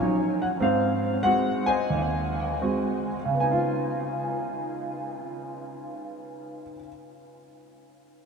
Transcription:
Already playing: C#5
0.01 F#3 C#4 D#4
0.42 F#5
0.60 G#2 C4 C5 F5
1.23 G#3 C4 F#4 F#5
1.66 C5 D#5 G#5
1.90 D#2
2.61 G#3 C4 F#4
3.25 C#3
3.34 B3
3.40 D#4 G#5
3.51 F4

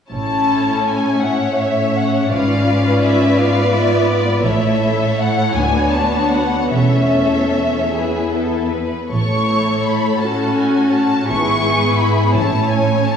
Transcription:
0.10 A1 A2 C#4 E4 A4 C#5 A5
0.86 G#5
1.21 A3 C#4 C#5 E5 F#5
1.60 E5
1.97 F#5
2.30 G#1 G#2 C#4 F4 B4 D5 F5
3.02 E5
3.35 B3 F4 D5 F5
3.72 E5
4.08 D5
4.44 A1 A2 A3 E4 A4 C#5 E5
5.18 F#5
5.53 D2 B3 D4 F#4 G#5
5.92 A5
6.33 F#5
6.71 E1 E2 A3 C#4 A4 C#5 E5
7.93 B3 E4 G#4
8.32 A4
8.71 B4
9.09 A1 A2 A3 E4 A4 C#5 C#6
9.86 B5
10.22 C#4 F#4 A5
10.58 G#5
10.94 A5
11.29 G#1 G#2 B3 E4 G#4 C#6
12.00 B5
12.35 A1 A2 A3 C#4 C#5 A5
12.71 G#5
13.07 A5

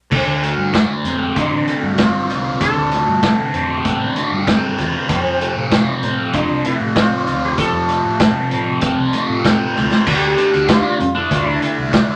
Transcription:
0.11 D2 D3 C4, kick, crash
0.26 D2
0.42 A3, closed hi-hat
0.57 G2
0.74 D3, kick, snare, closed hi-hat
1.04 F2 C4, closed hi-hat
1.36 D3 D4, kick, closed hi-hat
1.51 A1
1.68 A3, closed hi-hat
1.83 G2
1.98 C4 F4, kick, snare, closed hi-hat
2.29 C2 F4, snare, closed hi-hat
2.60 D3 A4, kick, closed hi-hat
2.76 D2
2.91 A3, closed hi-hat
3.08 G2
3.23 D3, kick, snare, closed hi-hat
3.54 F2 C4, closed hi-hat
3.85 D3, kick, closed hi-hat
4.00 A1
4.16 A3, closed hi-hat
4.31 G2
4.47 C4, kick, snare, closed hi-hat
4.78 E2 F4, snare, closed hi-hat
5.09 F2 F3 C4, kick, closed hi-hat
5.26 F2
5.41 A3, closed hi-hat
5.56 A2
5.71 F3, kick, snare, closed hi-hat
5.97 A#3
6.02 A2 C4, closed hi-hat
6.33 F3 D4, kick, closed hi-hat
6.49 C2
6.64 A3 E4, closed hi-hat
6.81 A2
6.96 C4 F4, kick, snare, closed hi-hat
7.27 D2 F4, closed hi-hat
7.45 G4
7.57 F3 A4, kick, closed hi-hat
7.73 F2
7.88 A3, closed hi-hat
8.05 A2
8.20 F3, kick, snare, closed hi-hat
8.51 A2 C4, closed hi-hat
8.81 F3, kick, closed hi-hat
8.98 C2
9.13 A3, closed hi-hat
9.29 A2
9.45 C4, kick, snare, closed hi-hat
9.76 D2 F4, snare
9.91 snare
10.06 D2 D3 A3 D4 G4, kick, crash
10.37 D3 A3 D4, closed hi-hat
10.52 D2 A3 D4, closed hi-hat
10.67 D3 A3 D4 F4, kick, snare, closed hi-hat
10.83 A3 D4
10.99 F2, muted distorted electric guitar stroke, closed hi-hat
11.15 A3 D4 E4
11.31 D2 E4, kick, closed hi-hat
11.46 A3 D4
11.61 D3 A3 D4, closed hi-hat
11.78 C2
11.92 D3 A3 D4, kick, snare, closed hi-hat
12.08 A3 D4

